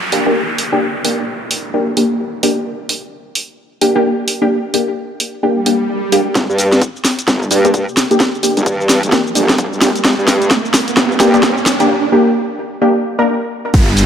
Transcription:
Already playing: downlifter
0.12 synth stab A#3 D4 G4, open hi-hat
0.26 synth stab A#3 D4 G4
0.58 open hi-hat
0.72 synth stab A#3 D4 G4
1.05 synth stab A#3 D4 G4, open hi-hat
1.51 open hi-hat
1.74 synth stab A#3 D4 G4
1.97 synth stab A#3 D4 G4, open hi-hat
2.43 synth stab A#3 D4 G4, open hi-hat
2.89 open hi-hat
3.35 open hi-hat
3.81 synth stab A#3 D4 G4, open hi-hat
3.96 synth stab A#3 D4 G4
4.28 open hi-hat
4.42 synth stab A#3 D4 G4
4.74 synth stab A#3 D4 G4, open hi-hat
5.20 open hi-hat
5.43 synth stab A#3 D4 G4, swell
5.66 synth stab A#3 D4 G4, open hi-hat
6.12 synth stab A#3 D4 G4, open hi-hat
6.35 wobble bass G1, kick, snare, closed hi-hat, riser, shaker
6.49 wobble bass G2, shaker
6.58 open hi-hat, shaker
6.72 snare, closed hi-hat, shaker
6.82 kick, closed hi-hat, shaker
6.96 shaker
7.05 snare, open hi-hat, shaker
7.19 closed hi-hat, shaker
7.28 wobble bass G1, kick, snare, closed hi-hat, shaker
7.42 shaker
7.51 wobble bass G2, synth stab A#3 D4 G4, open hi-hat, shaker
7.65 synth stab A#3 D4 G4, closed hi-hat, shaker
7.74 kick, closed hi-hat, shaker
7.89 shaker
7.97 snare, open hi-hat, shaker
8.11 synth stab A#3 D4 G4, closed hi-hat, shaker
8.20 kick, snare, closed hi-hat, shaker
8.35 shaker
8.43 synth stab A#3 D4 G4, open hi-hat, shaker
8.57 wobble bass G1, closed hi-hat, shaker
8.66 wobble bass G2, kick, closed hi-hat, shaker
8.81 shaker
8.89 snare, open hi-hat, shaker
9.03 wobble bass G1, closed hi-hat, shaker
9.12 synth stab A#3 D4 G4, kick, snare, closed hi-hat, shaker
9.27 shaker
9.35 wobble bass G1, synth stab A#3 D4 G4, open hi-hat, shaker
9.49 snare, closed hi-hat, shaker
9.58 wobble bass G1, kick, closed hi-hat, shaker
9.72 wobble bass G1, shaker
9.81 synth stab A#3 D4 G4, snare, open hi-hat, shaker
9.96 closed hi-hat, shaker
10.05 wobble bass G1, kick, snare, closed hi-hat, shaker
10.19 wobble bass G2, shaker
10.28 snare, open hi-hat, shaker
10.42 closed hi-hat, shaker
10.51 kick, snare, closed hi-hat, shaker
10.65 shaker
10.74 snare, open hi-hat, shaker
10.88 closed hi-hat, shaker
10.97 wobble bass G1, kick, snare, closed hi-hat, shaker
11.12 shaker
11.20 wobble bass G2, synth stab A#3 D4 G4, snare, open hi-hat, shaker
11.34 synth stab A#3 D4 G4, closed hi-hat, shaker
11.43 kick, snare, closed hi-hat, shaker
11.58 shaker
11.66 snare, open hi-hat, shaker
11.80 synth stab A#3 D4 G4, closed hi-hat, shaker
12.12 synth stab A#3 D4 G4
12.82 synth stab A#3 D4 G4
13.19 synth stab A#3 D4 A#4
13.74 wobble bass G1, kick, closed hi-hat, crash, downlifter, shaker
13.89 shaker
13.97 open hi-hat, shaker

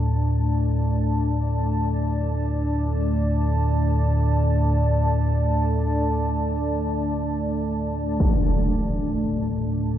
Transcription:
Already playing: synth drone D2 A2, ambient pad A3 D4 D5 A5
8.20 synth drone D2 A2, impact

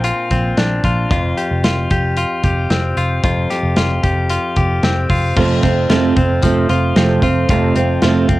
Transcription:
Already playing: picked electric bass A#1, clean electric guitar A#2 C4 D4
0.04 clean electric guitar F4, closed hi-hat
0.31 picked electric bass A#1, clean electric guitar C4, kick, closed hi-hat
0.57 picked electric bass A#1, clean electric guitar D4, snare, closed hi-hat
0.84 picked electric bass A#1, clean electric guitar F4, kick, closed hi-hat
1.11 picked electric bass F1, clean electric guitar F2 F4, kick, closed hi-hat
1.37 clean electric guitar G4, closed hi-hat
1.51 picked electric bass F1
1.64 picked electric bass F1, clean electric guitar F4, snare, closed hi-hat
1.90 picked electric bass F1, clean electric guitar G4, kick, closed hi-hat
2.17 clean electric guitar F4, closed hi-hat
2.44 picked electric bass F1, clean electric guitar G4, kick, closed hi-hat
2.70 picked electric bass F1, clean electric guitar C4, snare, closed hi-hat
2.97 picked electric bass F1, clean electric guitar F4, closed hi-hat
3.24 picked electric bass F1, clean electric guitar F2 F4, kick, closed hi-hat
3.51 clean electric guitar G4, snare, closed hi-hat
3.63 picked electric bass F1
3.77 picked electric bass F1, clean electric guitar F4, snare, closed hi-hat
4.04 picked electric bass F1, clean electric guitar G4, kick, closed hi-hat
4.30 clean electric guitar F4, closed hi-hat
4.56 picked electric bass F1, clean electric guitar G4, kick, closed hi-hat
4.83 picked electric bass F1, clean electric guitar C4, snare, closed hi-hat
5.10 picked electric bass F1, clean electric guitar F4, kick, open hi-hat
5.36 picked electric bass F1, steel-string acoustic guitar F2 C3 F3 A3 C4, clean electric guitar F2 F4, kick, crash
5.63 picked electric bass F1, steel-string acoustic guitar F3 A3 C4, clean electric guitar C4, kick, snare, closed hi-hat
5.89 picked electric bass F1, steel-string acoustic guitar F2 C3 F3 A3 C4, clean electric guitar F4, snare, closed hi-hat
6.16 picked electric bass F1, steel-string acoustic guitar F3 A3 C4, clean electric guitar C4, kick, closed hi-hat
6.42 picked electric bass F1, steel-string acoustic guitar C3 F3 A3 C4, clean electric guitar F3, kick, closed hi-hat
6.69 picked electric bass F1, steel-string acoustic guitar F3 A3 C4, clean electric guitar F4, closed hi-hat
6.96 picked electric bass F1, steel-string acoustic guitar F2 C3 F3 A3 C4, clean electric guitar C4, snare, closed hi-hat
7.22 picked electric bass F1, steel-string acoustic guitar F3 A3 C4, clean electric guitar F4, kick, closed hi-hat
7.49 picked electric bass F1, clean electric guitar F2 F4, steel-string acoustic guitar F2 C3 F3 A3 C4, kick, closed hi-hat
7.75 picked electric bass F1, steel-string acoustic guitar F3 A3 C4, clean electric guitar C4, closed hi-hat
8.02 picked electric bass F1, steel-string acoustic guitar F2 C3 F3 A3 C4, clean electric guitar F4, snare, closed hi-hat
8.29 picked electric bass F1, steel-string acoustic guitar F3 A3 C4, clean electric guitar C4, kick, closed hi-hat

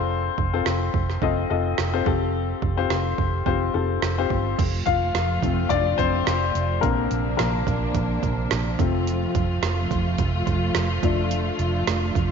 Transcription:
Already playing: fingered electric bass F1, upright piano C4 F4 A4 C5
0.38 fingered electric bass F1, kick
0.53 upright piano C4 F4 A4 C5
0.66 fingered electric bass F1, snare
0.94 fingered electric bass F1, kick
1.10 snare
1.22 fingered electric bass F1, upright piano C4 F4 A4 D#5, kick
1.50 fingered electric bass F1, upright piano C4 F4 A4 D#5
1.78 fingered electric bass F1, snare
1.93 upright piano C4 F4 A4 C5
2.06 fingered electric bass F1, upright piano C4 F4 G4 A4, kick
2.62 fingered electric bass F1, kick
2.77 upright piano C4 F4 G4 C5
2.90 fingered electric bass F1, snare
3.18 fingered electric bass F1, kick
3.46 fingered electric bass F1, upright piano C4 F4 G4 C5, kick
3.73 fingered electric bass F1, upright piano C4 F4 G4 A4
4.02 fingered electric bass F1, snare
4.18 upright piano C4 F4 G4 C5
4.30 fingered electric bass G1, kick
4.58 fingered electric bass F1, string section C3 F3 A3 F4, kick, closed hi-hat, crash
4.86 fingered electric bass F1, upright piano F4 F5, kick, closed hi-hat
5.15 fingered electric bass F1, snare, closed hi-hat
5.42 fingered electric bass F1, upright piano F3 A3 C4, kick, closed hi-hat
5.69 fingered electric bass F1, upright piano D4 D5, kick, closed hi-hat
5.98 fingered electric bass F1, upright piano C4 C5, kick, closed hi-hat
6.27 fingered electric bass F1, snare, closed hi-hat
6.55 fingered electric bass F1, closed hi-hat
6.81 fingered electric bass A#1, upright piano D3 A#3 C4 A#4, string section F3 A#3 D4, kick, closed hi-hat
7.11 fingered electric bass A#1, closed hi-hat
7.37 fingered electric bass A#1, upright piano A#3 A#4, snare, closed hi-hat
7.67 fingered electric bass A#1, kick, closed hi-hat
7.95 fingered electric bass A#1, kick, closed hi-hat
8.23 fingered electric bass A#1, kick, closed hi-hat
8.51 fingered electric bass A#1, snare, closed hi-hat
8.78 fingered electric bass F1, upright piano F3 A3 C4, string section A3 F4, kick, closed hi-hat
9.07 closed hi-hat
9.35 fingered electric bass F1, kick, closed hi-hat
9.62 fingered electric bass F1, snare, closed hi-hat
9.91 fingered electric bass F1, kick, closed hi-hat
10.18 fingered electric bass F1, kick, closed hi-hat
10.47 fingered electric bass F1, kick, closed hi-hat
10.75 fingered electric bass F1, snare, closed hi-hat
11.03 fingered electric bass F1, string section D3, upright piano F3 A3 D4, kick, closed hi-hat
11.31 closed hi-hat
11.59 fingered electric bass F1, closed hi-hat
11.87 fingered electric bass F1, snare, closed hi-hat
12.15 fingered electric bass F1, kick, closed hi-hat

